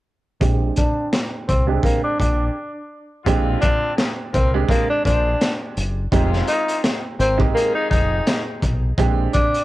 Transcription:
0.40 A#1 G#3 C4 D4 G4, kick, closed hi-hat
0.76 D4, kick, closed hi-hat
1.13 snare, closed hi-hat
1.48 C2 C4, kick, closed hi-hat
1.67 G#3 C4 D4 G4
1.83 A#3, kick, closed hi-hat
2.04 D4
2.20 A#1 D4, kick, closed hi-hat
3.25 A#1 D3 G#3 C4 D4 F4 G4, kick, closed hi-hat
3.61 D4, kick, closed hi-hat
3.97 F3 D4 G#4, snare, closed hi-hat
4.33 C2 G3 C4 F4 A#4, kick, closed hi-hat
4.54 G#3 C4 D4 G4
4.69 F3 A#3 D4 G#4, kick, closed hi-hat
4.90 D4
5.05 A#1 G#3 D4 G4 C5, kick, closed hi-hat
5.41 snare, closed hi-hat
5.77 F#1, closed hi-hat
6.12 F1 C3 G#3 C4 D#4 F4 G4, kick, closed hi-hat
6.33 snare
6.47 D#4, closed hi-hat
6.68 closed hi-hat
6.84 F3 D#4 G#4, snare, closed hi-hat
7.19 G#1 A#3 C4 G4 A#4, closed hi-hat
7.37 G#3 C4 D#4 G4, kick
7.54 F3 A#3 D#4 G#4, closed hi-hat
7.75 D#4
7.90 F1 D#4, kick, closed hi-hat
8.27 snare, closed hi-hat
8.62 B1, kick, closed hi-hat
8.98 A#1 G#3 C4 D4 G4, kick, closed hi-hat
9.33 D4, kick, closed hi-hat
9.54 closed hi-hat

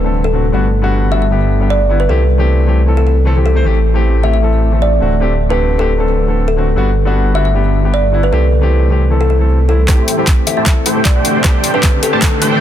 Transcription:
Already playing: D1 C3 G3 A3 D4
0.04 D3 A3 C4 A4
0.24 A4
0.33 D3 A3 C4 F#4
0.52 G1 D3 G3 B3 F#4
0.82 D3 G3 B3 F#4
1.11 D3 G3 B3 F#4 E5
1.22 E5
1.30 D3 G3 B3 G4
1.60 D3 G3 B3 G4
1.70 D5
1.89 D3 G3 B3 E4
2.00 B4
2.08 C2 E3 A3 C4 G4 A4
2.38 E3 A3 C4 G4
2.66 E3 A3 C4 G4
2.86 E3 A3 C4 A4
2.97 A4
3.07 A4
3.25 E3 A3 C4 A4
3.35 E3 A3 C4 G4
3.46 A4
3.55 E3 A3 C4 C5
3.64 A1 E3 A3 C4 G4
3.93 E3 A3 C4 G4
4.22 E3 A3 C4 G4 E5
4.34 E5
4.42 E3 A3 C4 A4
4.71 E3 A3 C4 A4
4.82 D5
5.00 D1 D3 A3 C4 F#4
5.20 D3 A3 C4 G4
5.49 D3 A3 C4 G4 B4
5.78 D3 A3 C4 G4 A4
5.98 D3 A3 C4 A4
6.27 D3 A3 C4 A4
6.48 A4
6.56 D3 A3 C4 F#4
6.76 G1 D3 G3 B3 F#4
7.05 D3 G3 B3 F#4
7.34 D3 G3 B3 F#4 E5
7.45 E5
7.54 D3 G3 B3 G4
7.83 D3 G3 B3 G4
7.94 D5
8.12 D3 G3 B3 E4
8.23 B4
8.31 C2 E3 A3 C4 G4 A4
8.61 E3 A3 C4 G4
8.90 E3 A3 C4 G4
9.10 E3 A3 C4 A4
9.21 A4
9.30 A4
9.39 E3 A3 C4 A4
9.68 E3 A3 C4 E4 A4
9.87 E3 A3 C4 E4 G4 C5 G5, kick, cross-stick, clap, closed hi-hat, riser
10.08 closed hi-hat
10.17 E3 A3 C4 E4 G4 C5 G5
10.27 kick, clap, closed hi-hat
10.46 E3 A3 C4 G4 E5, closed hi-hat
10.57 A3 E4 G4 C5 E5 A5
10.65 E3 A3 C4 A4, kick, clap, closed hi-hat
10.86 A3 E4 G4 C5 G5, closed hi-hat
10.95 E3 A3 C4 A4
11.05 D5, kick, clap, closed hi-hat
11.15 A3 D4 G4 C5 G5
11.24 D3 A3 C4 F#4, closed hi-hat
11.43 D3 A3 C4 D4 G4, kick, cross-stick, clap, closed hi-hat
11.64 closed hi-hat
11.73 D3 A3 C4 D4 G4 B4 C5 G5
11.83 kick, clap, closed hi-hat
12.02 D3 A3 C4 G4 A4, closed hi-hat
12.13 A3 D4 G4 C5 A5
12.21 D3 A3 C4 A4, kick, clap, closed hi-hat
12.42 A3 D4 G4 C5 G5, closed hi-hat
12.51 D3 A3 C4 A4

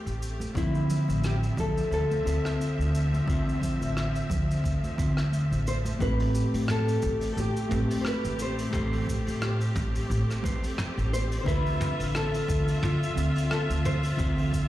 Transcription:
Already playing: A3 C4 G4
0.06 A1, cabasa
0.23 cabasa
0.40 high conga, cabasa
0.54 D2 D3 F3 C4 E4 E5, kick, cabasa
0.75 cabasa
0.90 low conga, cabasa
1.08 A1, high conga, cabasa
1.24 G4, cross-stick, cabasa
1.43 cabasa
1.57 D2 A4, kick, high conga, low conga, cabasa
1.78 cabasa
1.91 D2 A4, cabasa
2.11 high conga, cabasa
2.23 D2 D3 C4 F4 E5, cabasa
2.45 cross-stick, cabasa
2.60 high conga, cabasa
2.79 D2, cabasa
2.95 cabasa
3.13 high conga, cabasa
3.26 D2 D3 C4 F4 E5, kick, cabasa
3.49 cabasa
3.62 kick, low conga, cabasa
3.81 A1, high conga, cabasa
3.97 cross-stick, cabasa
4.16 cabasa
4.30 D2, kick, low conga, cabasa
4.51 cabasa
4.64 D2, kick, cabasa
4.84 high conga, cabasa
4.97 D2 D3 C4 F4 E5, kick, cabasa
5.17 cross-stick, cabasa
5.32 high conga, cabasa
5.51 A1, cabasa
5.67 C5, cabasa
5.85 high conga, cabasa
5.99 A1 A3 C4 G4 B4, kick, cabasa
6.20 open hi-hat
6.35 cabasa
6.54 A2, open hi-hat, cabasa
6.68 A4, cross-stick, mid tom, cabasa
6.88 open hi-hat, cabasa
7.02 A1, kick, cabasa
7.21 open hi-hat, cabasa
7.33 A4
7.37 A1 G4, cabasa
7.57 cabasa
7.69 A1 A3 C4 G4 B4, mid tom, cabasa
7.90 open hi-hat, cabasa
8.01 C5
8.05 B4, cross-stick, cabasa
8.25 A1, cabasa
8.39 C5, cabasa
8.59 open hi-hat, cabasa
8.71 A1 A3 G4 A4 C5, kick, mid tom, cabasa
8.93 open hi-hat
9.07 kick, cabasa
9.27 A2, open hi-hat, cabasa
9.42 cross-stick, cabasa
9.60 open hi-hat, cabasa
9.75 A1, kick, mid tom, cabasa
9.95 open hi-hat, cabasa
10.10 A1, cabasa
10.31 cross-stick, cabasa
10.43 A1 A3 G4 B4 C5, kick, cabasa
10.64 open hi-hat, cabasa
10.78 cross-stick, mid tom, cabasa
10.97 A1, cabasa
11.13 C5, cabasa
11.32 open hi-hat, cabasa
11.41 D3 C5
11.46 D2 D3 F4 B4 E5, kick, cabasa
11.66 open hi-hat
11.81 mid tom, cabasa
12.00 A1, open hi-hat, cabasa
12.15 A4, cross-stick, cabasa
12.34 open hi-hat, cabasa
12.48 D2, kick, cabasa
12.68 open hi-hat, cabasa
12.83 D2 F4, mid tom, cabasa
13.03 cabasa
13.15 D2 D3 C4 F4 E5, cabasa
13.36 open hi-hat, cabasa
13.51 A4, cross-stick, cabasa
13.70 D2, cabasa
13.85 C5, mid tom, cabasa
14.03 open hi-hat, cabasa
14.17 D2 D3 C4 F4 E5, kick, cabasa
14.38 open hi-hat
14.53 kick, cabasa

